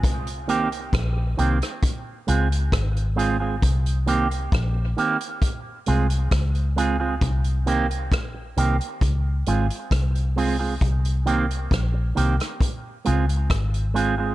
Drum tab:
HH |xxxxx-xxx-xxxxx-|xxxxx-xxx-xxxxx-|xxxxx-xxx-xxxxo-|xxxxx-xxx-xxxxx-|
SD |----r--r----r---|----r-------r---|----r-------r---|----r--r----r---|
BD |o---o---o---o---|o---o---o---o---|o---o---o---o---|o---o---o---o---|